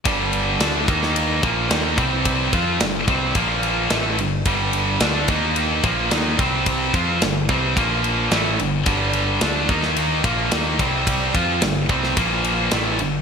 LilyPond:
<<
  \new Staff \with { instrumentName = "Distorted electric guitar" } { \clef bass \time 4/4 \key g \minor \tempo 4 = 109 <g, d g>4 <d a d'>8 <ees bes ees'>4 <bes, f bes>8 <ees bes ees'>8 <c g c'>8~ | <c g c'>8 <f c' f'>8 <g, d>8 <c g c'>8 <bes, f bes>4 <a, e a>8 <g, d>8 | <g, d g>4 <d a d'>8 <ees bes ees'>4 <bes, f bes>8 <ees bes ees'>8 <c g c'>8~ | <c g c'>8 <f c' f'>8 <g, d>8 <c g c'>8 <bes, f bes>4 <a, e a>8 <g, d>8 |
<g, d g>4 <d a d'>8 <ees bes ees'>4 <bes, f bes>8 <ees bes ees'>8 <c g c'>8~ | <c g c'>8 <f c' f'>8 <g, d>8 <c g c'>8 <bes, f bes>4 <a, e a>8 <g, d>8 | }
  \new Staff \with { instrumentName = "Distorted electric guitar" } { \clef bass \time 4/4 \key g \minor <g, d g>4 <d a d'>8 <ees bes ees'>4 <bes, f bes>8 <ees bes ees'>8 <c g c'>8~ | <c g c'>8 <f c' f'>8 <g, d>8 <c g c'>8 <bes, f bes>4 <a, e a>8 <g, d>8 | <g, d g>4 <d a d'>8 <ees bes ees'>4 <bes, f bes>8 <ees bes ees'>8 <c g c'>8~ | <c g c'>8 <f c' f'>8 <g, d>8 <c g c'>8 <bes, f bes>4 <a, e a>8 <g, d>8 |
<g, d g>4 <d a d'>8 <ees bes ees'>4 <bes, f bes>8 <ees bes ees'>8 <c g c'>8~ | <c g c'>8 <f c' f'>8 <g, d>8 <c g c'>8 <bes, f bes>4 <a, e a>8 <g, d>8 | }
  \new Staff \with { instrumentName = "Picked electric bass" } { \clef bass \time 4/4 \key g \minor g,,4 d,8 ees,4 bes,,8 ees,8 c,8~ | c,8 f,8 g,,8 c,8 bes,,4 a,,8 g,,8 | g,,4 d,8 ees,4 bes,,8 ees,8 c,8~ | c,8 f,8 g,,8 c,8 bes,,4 a,,8 g,,8 |
g,,4 d,8 ees,4 bes,,8 ees,8 c,8~ | c,8 f,8 g,,8 c,8 bes,,4 a,,8 g,,8 | }
  \new DrumStaff \with { instrumentName = "Drums" } \drummode { \time 4/4 <bd cymr>8 cymr8 <cymr sn>8 <bd cymr>16 sn16 cymr8 <bd cymr>8 <cymr sn>8 <bd cymr>8 | <bd cymr>8 <bd cymr>8 <cymr sn>8 <bd cymr>8 <bd cymr>8 cymr8 <cymr sn>8 cymr8 | <bd cymr>8 cymr8 <cymr sn>8 <bd cymr>8 cymr8 <bd cymr>8 <cymr sn>8 <bd cymr>8 | <bd cymr>8 <bd cymr>8 <cymr sn>8 <bd cymr>8 <bd cymr>8 cymr8 <cymr sn>8 cymr8 |
<bd cymr>8 cymr8 <cymr sn>8 <bd cymr>16 sn16 cymr8 <bd cymr>8 <cymr sn>8 <bd cymr>8 | <bd cymr>8 <bd cymr>8 <cymr sn>8 <bd cymr>16 sn16 <bd cymr>8 cymr8 <cymr sn>8 cymr8 | }
>>